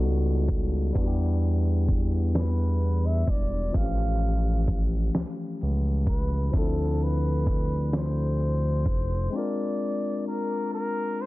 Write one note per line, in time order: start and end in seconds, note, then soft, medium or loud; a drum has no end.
0.00 0.92 C#2 medium
0.00 0.91 G3 medium
0.00 0.93 B3 medium
0.00 0.96 D#4 medium
0.00 0.96 F#4 medium
0.00 0.97 A4 medium
0.00 closed hi-hat soft
0.49 kick loud
0.49 closed hi-hat medium
0.93 3.24 E2 loud
0.93 3.69 G3 medium
0.93 3.70 B3 medium
0.93 3.71 D4 medium
0.93 kick loud
0.93 closed hi-hat medium
0.99 3.72 E4 medium
0.99 1.04 F#4 medium
1.07 3.76 G4 medium
1.42 closed hi-hat soft
1.88 kick medium
1.88 closed hi-hat medium
2.35 3.08 B4 medium
2.35 snare loud
2.35 closed hi-hat medium
2.82 closed hi-hat soft
3.06 3.31 E5 medium
3.27 3.71 E1 medium
3.27 3.77 D5 loud
3.27 kick loud
3.27 closed hi-hat medium
3.72 5.10 A1 loud
3.72 6.48 F3 medium
3.72 6.49 A3 medium
3.72 4.80 F5 medium
3.72 kick loud
3.72 closed hi-hat medium
3.76 6.51 E3 medium
3.76 3.82 C4 soft
3.76 6.52 G4 medium
3.83 6.54 C#4 medium
4.21 closed hi-hat soft
4.68 kick loud
4.68 closed hi-hat medium
5.15 5.25 C#2 soft
5.15 snare loud
5.15 closed hi-hat medium
5.61 6.50 C#2 medium
5.61 closed hi-hat soft
6.07 6.57 B4 medium
6.07 kick loud
6.07 closed hi-hat medium
6.51 8.88 D2 loud
6.51 9.27 F3 medium
6.51 9.28 C4 medium
6.51 kick loud
6.51 closed hi-hat soft
6.55 9.29 D4 medium
6.55 9.30 E4 medium
6.55 7.04 A4 medium
6.55 9.31 A4 medium
7.00 7.94 B4 loud
7.00 closed hi-hat soft
7.46 kick loud
7.46 closed hi-hat medium
7.93 9.38 C5 medium
7.93 snare loud
7.93 closed hi-hat medium
8.40 closed hi-hat soft
8.86 9.29 F1 medium
8.86 kick loud
8.86 closed hi-hat medium
9.30 11.26 G#3 medium
9.30 11.26 C4 medium
9.30 11.26 D4 medium
9.36 11.26 F4 medium
9.36 11.26 A#4 medium
9.36 10.27 D5 loud
10.27 10.70 A#4 medium
10.74 11.23 A#4 medium
11.21 11.26 C5 medium